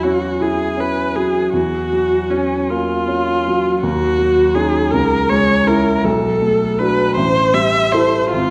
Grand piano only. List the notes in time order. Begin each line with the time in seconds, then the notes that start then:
Already playing: E2 F#3
0.04 C#4
0.40 E4
0.77 C#4
1.16 F#3
1.53 E2
1.93 F#3
2.31 C#4
2.70 A#3
3.08 C#4
3.47 F#3
3.83 D#2
4.19 F#3
4.55 C#4 D#4
4.93 C#2
5.31 G#3
5.67 C#4 E4
6.04 B1
6.42 A3
6.80 D4 F#4
7.17 A1
7.54 G3
7.93 E4 A4
8.33 G#1